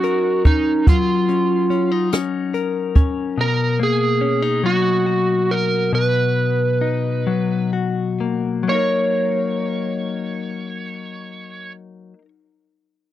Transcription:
Already playing: clean electric guitar F#3 C#4 D#4, electric slide guitar F#4
0.03 clean electric guitar A#4, closed hi-hat
0.45 clean electric guitar C#4, electric slide guitar D#4, kick, closed hi-hat
0.87 clean electric guitar F#3, electric slide guitar F4, kick, closed hi-hat
1.28 clean electric guitar C#4, closed hi-hat
1.70 clean electric guitar C#4, closed hi-hat
1.92 clean electric guitar D#4
2.12 clean electric guitar C#4, cross-stick, closed hi-hat
2.54 clean electric guitar A#4, closed hi-hat
2.95 clean electric guitar C#4, kick, closed hi-hat
3.38 clean electric guitar B2, electric slide guitar A#4
3.80 clean electric guitar A#3, electric slide guitar G#4
4.21 clean electric guitar C#4
4.42 clean electric guitar D#4
4.64 clean electric guitar F#3, electric slide guitar F#4
5.06 clean electric guitar F#4
5.51 electric slide guitar A#4
5.93 clean electric guitar B2, electric slide guitar B4
6.81 clean electric guitar D#4
7.27 clean electric guitar F#3
7.73 clean electric guitar F#4
8.20 clean electric guitar A#3
8.63 clean electric guitar F#3
8.68 clean electric guitar A#3 D#4, electric slide guitar C#5
8.75 clean electric guitar A#4 C#5

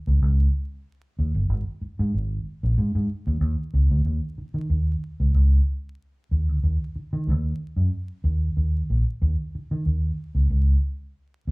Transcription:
0.07 fingered electric bass C#2
0.22 fingered electric bass C#2
1.19 fingered electric bass D#2
1.35 fingered electric bass G1
1.49 fingered electric bass G#1
1.81 muted fingered electric bass stroke
1.99 fingered electric bass G#2
2.14 fingered electric bass G#1
2.63 fingered electric bass A#1
2.78 fingered electric bass G#2
2.95 fingered electric bass G#2
3.27 fingered electric bass D#2
3.41 fingered electric bass D#2
3.74 fingered electric bass C#2
3.90 fingered electric bass D2
4.05 fingered electric bass D#2
4.38 muted fingered electric bass stroke
4.54 fingered electric bass D#3
4.70 fingered electric bass D#2
5.20 fingered electric bass C#2
5.34 fingered electric bass C#2
6.31 fingered electric bass D#2
6.49 fingered electric bass D2
6.64 fingered electric bass D#2
6.96 muted fingered electric bass stroke
7.13 fingered electric bass D#3
7.27 fingered electric bass D#2
7.76 fingered electric bass F#2
8.24 fingered electric bass D#2
8.57 fingered electric bass D#2
8.90 fingered electric bass A#1
9.22 fingered electric bass D#2
9.55 muted fingered electric bass stroke
9.71 fingered electric bass D#3
9.86 fingered electric bass D#2
10.35 fingered electric bass C#2
10.50 fingered electric bass C#2
11.47 fingered electric bass D#2

